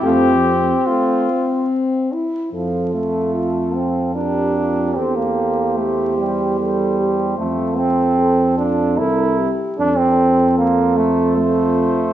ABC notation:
X:1
M:3/4
L:1/16
Q:1/4=74
K:F
V:1 name="Trumpet"
G4 F4 z4 | A8 B4 | c12- | c8- c2 z2 |
c12 |]
V:2 name="Flugelhorn"
C8- C2 z2 | F8 G4- | G12 | A8 B2 z2 |
A12 |]
V:3 name="French horn"
A,2 z2 A,2 C4 E2 | A4 F4 G2 F2 | A4 G4 A2 G2 | F4 A2 F2 A2 G2 |
A6 z2 F4 |]
V:4 name="Trombone"
F,2 z8 z2 | F,2 A,4 C2 D4 | C B,3 A,2 G,2 G,4 | A,2 C4 D2 E3 z |
D C3 B,2 A,2 A,4 |]
V:5 name="Tuba" clef=bass
F,,4 z8 | F,,12 | E,,12 | F,,8 C,,2 z2 |
F,,12 |]